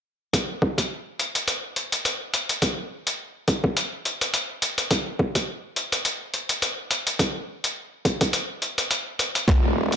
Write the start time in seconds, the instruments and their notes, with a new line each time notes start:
0.33 kick, closed hi-hat
0.62 kick
0.78 kick, closed hi-hat
1.19 closed hi-hat
1.35 closed hi-hat
1.48 closed hi-hat
1.76 closed hi-hat
1.92 closed hi-hat
2.05 closed hi-hat
2.34 closed hi-hat
2.49 closed hi-hat
2.62 kick, closed hi-hat
3.07 closed hi-hat
3.48 kick, closed hi-hat
3.64 kick
3.77 closed hi-hat
4.05 closed hi-hat
4.21 closed hi-hat
4.34 closed hi-hat
4.62 closed hi-hat
4.78 closed hi-hat
4.91 kick, closed hi-hat
5.19 kick
5.35 kick, closed hi-hat
5.76 closed hi-hat
5.92 closed hi-hat
6.05 closed hi-hat
6.34 closed hi-hat
6.49 closed hi-hat
6.62 closed hi-hat
6.91 closed hi-hat
7.07 closed hi-hat
7.19 kick, closed hi-hat
7.64 closed hi-hat
8.05 kick, closed hi-hat
8.21 kick, closed hi-hat
8.33 closed hi-hat
8.62 closed hi-hat
8.78 closed hi-hat
8.91 closed hi-hat
9.19 closed hi-hat
9.35 closed hi-hat
9.48 detuned saw bass D#1, kick, snare, closed hi-hat
9.76 detuned saw bass D#1
9.92 closed hi-hat